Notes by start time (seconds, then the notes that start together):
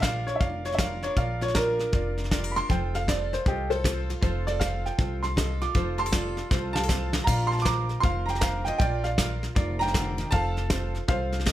Already playing: A#1 F4 A#4
0.02 F3 D4 F4 A#4 D5 F5, kick, snare, hi-hat pedal
0.27 C#5, snare
0.36 E5
0.40 F1 A#2 F4 A#4 D5 F5, kick, snare
0.65 F4 C#5, snare
0.72 E5, snare
0.78 F3 F4 A#4 D5 F5, kick, snare, hi-hat pedal
1.03 D4 C#5, snare
1.16 A#1 A#2 F4 A#4 D5 F5, kick, snare
1.41 F4 C#5, snare
1.48 snare
1.55 F3 D4 F4 A#4 D5, kick, snare, hi-hat pedal
1.79 snare
1.92 F1 A#2 F4 A#4 D5, kick, snare
2.18 F4, snare
2.24 snare
2.31 F3 F4 G4 A#4 D5, kick, snare, hi-hat pedal
2.44 A#4
2.51 B5
2.56 D4 C6, snare
2.69 F1 F3 F4 A4 C5 G5, kick, snare
2.95 A4 F5, snare
3.07 C4 F4 A4 C5 D5, kick, snare, hi-hat pedal
3.33 C5, snare
3.46 C2 C3 F4 G4 A4 D#5, kick, snare
3.70 A4 C5, snare
3.84 C4 F4 A4 C5, kick, snare, hi-hat pedal
4.10 F4, snare
4.21 F1 F3 F4 A4 C5, kick, snare
4.47 A4 D5, snare
4.60 C4 F4 A4 C5 F5, kick, snare, hi-hat pedal
4.86 G5, snare
4.98 C2 C3 F4 A4 C5, kick, snare
5.23 A4 C6, snare
5.36 C4 F4 A4 D#5, kick, snare, hi-hat pedal
5.62 F4 D6, snare
5.75 F1 F3 F4 A4 C5, kick, snare
5.98 G4 A5 C6, snare
6.06 A4, snare
6.12 C4 F4 A4 D5, kick, snare, hi-hat pedal
6.37 snare
6.51 C2 C3 F4 A4 C5, kick, snare
6.73 F5 A5, snare
6.77 G4
6.83 A4
6.88 C4 F4 A4 C5, kick, snare, hi-hat pedal
7.13 F4, snare
7.24 A#1 F4 A#4 D5 F5 A#5, kick, snare, crash
7.28 A#2 F4
7.47 A5 C6
7.52 snare
7.59 D6, snare
7.64 F3 F4 A#4 C5 A#5, kick, snare, hi-hat pedal
7.89 snare
8.00 F1 A#2 F4 A#4 C5 F5 C6, kick, snare
8.26 D4 A#5, snare
8.30 G5
8.35 A#5, snare
8.41 F3 F4 A#4 C5 F5, kick, snare, hi-hat pedal
8.65 F4 D#5 G5, snare
8.78 A#1 A#2 F4 A#4 D5 G5, kick, snare
9.04 D5 F5, snare
9.18 F3 F4 A#4 F5, kick, snare, hi-hat pedal
9.43 snare
9.55 F1 A#2 F4 A#4 D5, kick, snare
9.79 D4 G5 A#5, snare
9.87 snare
9.94 D3 F4 A#4 F5, kick, snare, hi-hat pedal
10.18 D#3, snare
10.31 F1 F3 F4 A4 C5 F5 A5, kick, snare
10.57 snare
10.70 C4 F4 A4 C5, kick, snare, hi-hat pedal
10.95 snare
11.08 C2 C3 F4 A4 C5 F5, kick, snare
11.32 F4, snare
11.40 snare
11.46 C4 F4 A4 D#5, kick, snare, hi-hat pedal